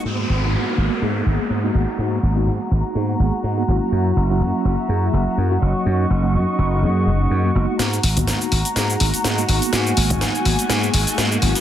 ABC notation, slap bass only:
X:1
M:4/4
L:1/8
Q:"Swing 16ths" 1/4=124
K:G#m
V:1 name="Slap bass" clef=bass
G,, G,,, G,, G,,, G,, G,,, G,, G,,, | G,, G,,, G,, G,,, G,, G,,, G,, G,,, | F,, F,,, F,, F,,, F,, F,,, F,, F,,, | F,, F,,, F,, F,,, F,, F,,, F,, F,,, |
G,, G,,, G,, G,,, G,, G,,, G,, G,,, | G,, G,,, G,, G,,, G,, G,,, G,, G,,, |]